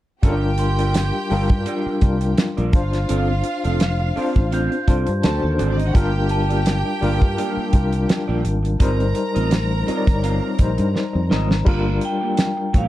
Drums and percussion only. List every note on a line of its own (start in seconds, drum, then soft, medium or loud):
0.23 kick medium
0.23 closed hi-hat medium
0.58 closed hi-hat medium
0.79 closed hi-hat soft
0.94 snare medium
0.94 closed hi-hat medium
1.31 open hi-hat soft
1.49 kick medium
1.49 closed hi-hat medium
1.66 closed hi-hat medium
2.01 kick medium
2.01 closed hi-hat medium
2.21 closed hi-hat soft
2.37 snare loud
2.37 closed hi-hat medium
2.57 closed hi-hat soft
2.73 kick loud
2.73 closed hi-hat medium
2.93 snare soft
2.93 closed hi-hat soft
3.09 closed hi-hat medium
3.44 closed hi-hat medium
3.64 closed hi-hat soft
3.80 snare medium
3.80 closed hi-hat medium
4.17 open hi-hat soft
4.36 kick medium
4.36 closed hi-hat soft
4.52 closed hi-hat medium
4.72 closed hi-hat soft
4.88 kick medium
4.88 closed hi-hat medium
5.07 closed hi-hat soft
5.23 snare loud
5.23 closed hi-hat medium
5.59 closed hi-hat medium
5.80 closed hi-hat soft
5.95 kick medium
5.95 closed hi-hat medium
6.29 closed hi-hat medium
6.50 closed hi-hat soft
6.66 snare medium
6.66 closed hi-hat medium
7.02 open hi-hat soft
7.22 kick medium
7.22 closed hi-hat soft
7.38 closed hi-hat medium
7.73 kick medium
7.73 closed hi-hat medium
7.93 closed hi-hat soft
8.09 snare loud
8.09 closed hi-hat medium
8.45 closed hi-hat medium
8.65 closed hi-hat soft
8.80 kick medium
8.80 closed hi-hat loud
9.00 closed hi-hat soft
9.15 closed hi-hat medium
9.36 closed hi-hat soft
9.51 snare medium
9.51 closed hi-hat medium
9.88 closed hi-hat medium
10.07 kick medium
10.07 closed hi-hat medium
10.24 closed hi-hat medium
10.59 kick medium
10.59 closed hi-hat medium
10.78 closed hi-hat soft
10.96 snare medium
11.31 snare medium
11.51 snare medium
11.66 kick medium
11.66 crash medium
12.01 closed hi-hat medium
12.37 snare medium
12.37 closed hi-hat medium
12.74 kick medium
12.74 closed hi-hat medium